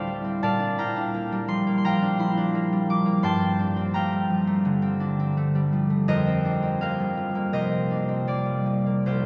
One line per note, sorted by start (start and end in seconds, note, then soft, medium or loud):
0.00 0.46 D2 medium
0.00 0.45 A2 medium
0.00 0.46 A3 soft
0.00 0.23 C4 medium
0.00 0.58 D4 medium
0.00 2.93 F4 medium
0.00 0.46 A4 medium
0.00 0.46 C5 medium
0.00 0.42 D5 medium
0.00 0.45 E5 medium
0.00 0.42 F5 medium
0.07 0.37 G3 soft
0.24 0.45 C4 medium
0.43 3.27 A#2 medium
0.43 4.33 D5 medium
0.43 0.78 F5 medium
0.43 1.02 A5 medium
0.59 0.95 D4 medium
0.78 1.08 E4 soft
0.78 1.84 F5 medium
0.78 1.84 G5 medium
0.78 1.83 A#5 medium
0.96 2.01 D4 medium
1.14 1.66 A#3 medium
1.32 2.71 G3 medium
1.48 1.78 F3 medium
1.48 1.76 C6 loud
1.67 2.54 A#3 medium
1.78 1.88 C6 medium
1.84 2.89 F3 medium
1.84 3.94 F5 medium
1.84 3.23 G5 medium
1.84 3.93 A#5 loud
2.02 2.36 D4 medium
2.19 2.49 E4 medium
2.19 3.22 C6 loud
2.37 3.58 D4 medium
2.55 3.05 A#3 medium
2.72 4.11 G3 medium
2.90 3.19 F3 soft
2.90 6.12 D6 medium
3.06 6.80 A#3 medium
3.23 6.11 G2 medium
3.23 3.94 G5 medium
3.23 6.12 A5 medium
3.23 7.13 C6 loud
3.41 3.75 C4 medium
3.59 3.89 D4 medium
3.76 4.81 C4 medium
3.93 4.46 A3 medium
3.93 6.80 F5 medium
3.93 7.85 G5 medium
3.93 7.84 A#5 medium
4.12 5.54 G3 medium
4.30 4.60 F3 soft
4.47 5.36 A3 medium
4.65 6.12 D3 medium
4.82 5.18 C4 medium
5.00 5.31 D4 medium
5.19 6.26 C4 medium
5.37 5.89 A3 medium
5.55 6.98 G3 medium
5.73 6.03 F3 soft
5.90 6.11 A3 medium
6.08 9.10 F2 medium
6.08 6.81 A#4 medium
6.08 6.81 C5 medium
6.08 7.52 D#5 loud
6.27 6.61 C4 medium
6.45 6.76 D4 medium
6.63 7.70 C4 medium
6.81 7.34 A#3 soft
6.81 7.53 A#4 medium
6.81 7.53 C5 medium
6.81 9.26 F5 medium
7.00 8.44 G3 medium
7.17 7.48 F3 soft
7.35 8.26 A#3 medium
7.53 9.10 C3 medium
7.53 9.26 A#4 medium
7.53 9.05 C5 medium
7.53 9.26 D#5 medium
7.72 8.07 C4 soft
7.91 8.23 D4 soft
8.09 9.26 C4 soft
8.27 8.85 A#3 medium
8.27 9.26 D5 medium
8.46 9.26 G3 soft
8.66 9.00 F3 soft
8.86 9.26 A#3 soft
9.06 9.26 C2 medium
9.06 9.26 F4 medium
9.06 9.26 G4 medium
9.06 9.26 C5 medium